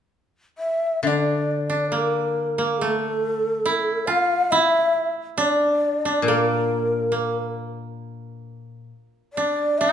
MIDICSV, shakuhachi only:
0, 0, Header, 1, 2, 480
1, 0, Start_track
1, 0, Tempo, 875912
1, 570, Time_signature, 2, 2, 24, 8
1, 1528, Tempo, 862069
1, 3928, Tempo, 892857
1, 5447, End_track
2, 0, Start_track
2, 0, Title_t, "Shakuhachi"
2, 0, Program_c, 0, 77
2, 318, Note_on_c, 0, 76, 67
2, 548, Note_off_c, 0, 76, 0
2, 564, Note_on_c, 0, 76, 50
2, 586, Note_on_c, 0, 74, 54
2, 592, Note_off_c, 0, 76, 0
2, 1027, Note_off_c, 0, 74, 0
2, 1049, Note_on_c, 0, 70, 54
2, 1526, Note_on_c, 0, 69, 63
2, 1534, Note_off_c, 0, 70, 0
2, 2239, Note_on_c, 0, 81, 70
2, 2248, Note_off_c, 0, 69, 0
2, 2259, Note_on_c, 0, 77, 76
2, 2265, Note_off_c, 0, 81, 0
2, 2486, Note_on_c, 0, 76, 76
2, 2494, Note_off_c, 0, 77, 0
2, 2818, Note_off_c, 0, 76, 0
2, 2969, Note_on_c, 0, 73, 69
2, 3036, Note_off_c, 0, 73, 0
2, 3036, Note_on_c, 0, 74, 69
2, 3423, Note_off_c, 0, 74, 0
2, 3457, Note_on_c, 0, 70, 62
2, 4155, Note_off_c, 0, 70, 0
2, 5129, Note_on_c, 0, 74, 63
2, 5371, Note_on_c, 0, 76, 65
2, 5379, Note_off_c, 0, 74, 0
2, 5447, Note_off_c, 0, 76, 0
2, 5447, End_track
0, 0, End_of_file